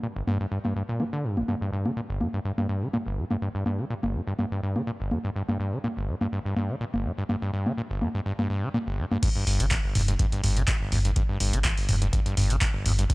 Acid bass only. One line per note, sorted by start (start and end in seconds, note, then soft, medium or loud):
0.03 0.07 A#2 medium
0.16 0.22 G1 medium
0.27 0.38 G2 loud
0.40 0.47 G2 medium
0.52 0.59 G2 medium
0.65 0.74 G2 medium
0.76 0.83 G2 medium
0.89 1.02 A#2 medium
1.00 1.04 G3 loud
1.13 1.26 D3 medium
1.24 1.39 G2 medium
1.37 1.43 G1 medium
1.48 1.55 G2 medium
1.61 1.71 G2 medium
1.73 1.87 G2 medium
1.85 1.92 D3 medium
1.97 2.01 A#2 medium
2.10 2.23 G1 medium
2.21 2.28 G2 medium
2.34 2.40 G2 medium
2.45 2.52 G2 medium
2.58 2.67 G2 medium
2.69 2.84 G2 medium
2.82 2.89 D3 medium
2.93 2.98 A#2 medium
3.06 3.19 G1 medium
3.18 3.25 G2 medium
3.31 3.37 G2 medium
3.42 3.49 G2 medium
3.55 3.64 G2 medium
3.66 3.81 G2 medium
3.79 3.85 D3 medium
3.90 3.95 A#2 medium
4.03 4.16 G1 medium
4.15 4.22 G2 medium
4.27 4.34 G2 medium
4.39 4.46 G2 medium
4.52 4.61 G2 medium
4.63 4.77 G2 medium
4.76 4.82 D3 medium
4.87 4.91 A#2 medium
5.00 5.13 G1 medium
5.11 5.19 G2 medium
5.24 5.30 G2 medium
5.36 5.43 G2 medium
5.49 5.58 G2 medium
5.60 5.74 G2 medium
5.73 5.79 D3 medium
5.84 5.88 A#2 medium
5.97 6.10 G1 medium
6.08 6.15 G2 medium
6.21 6.27 G2 medium
6.32 6.40 G2 medium
6.45 6.55 G2 medium
6.57 6.71 G2 medium
6.69 6.76 D3 medium
6.81 6.85 A#2 medium
6.94 7.06 G1 medium
7.05 7.12 G2 medium
7.18 7.24 G2 medium
7.29 7.36 G2 medium
7.42 7.51 G2 medium
7.53 7.68 G2 medium
7.66 7.72 D3 medium
7.78 7.82 A#2 medium
7.91 8.03 G1 medium
8.02 8.09 G2 medium
8.15 8.21 G2 medium
8.26 8.33 G2 medium
8.39 8.48 G2 medium
8.50 8.64 G2 medium
8.63 8.69 D3 medium
8.74 8.79 A#2 medium
8.87 9.00 G1 medium
8.98 9.06 G2 medium
9.12 9.18 G2 medium
9.22 9.30 G2 medium
9.36 9.45 G2 medium
9.47 9.61 G2 medium
9.60 9.66 D3 medium
9.71 9.75 A#2 medium
9.84 9.97 G1 medium
9.95 10.02 G2 medium
10.08 10.14 G2 medium
10.19 10.27 G2 medium
10.32 10.42 G2 medium
10.44 10.58 G2 medium
10.56 10.63 D3 medium
10.68 10.72 A#2 medium
10.81 10.93 G1 medium
10.92 10.99 G2 medium
11.05 11.11 G2 medium
11.16 11.23 G2 medium
11.29 11.38 G2 medium
11.40 11.55 G2 medium
11.53 11.59 D3 medium
11.64 11.69 A#2 medium
11.77 11.90 G1 medium
11.89 11.96 G2 medium
12.02 12.08 G2 medium
12.13 12.20 G2 medium
12.26 12.35 G2 medium
12.37 12.52 G2 medium
12.50 12.56 D3 medium
12.61 12.66 A#2 medium
12.74 12.87 G1 medium
12.85 12.93 G2 medium
12.98 13.05 G2 medium
13.10 13.14 G2 medium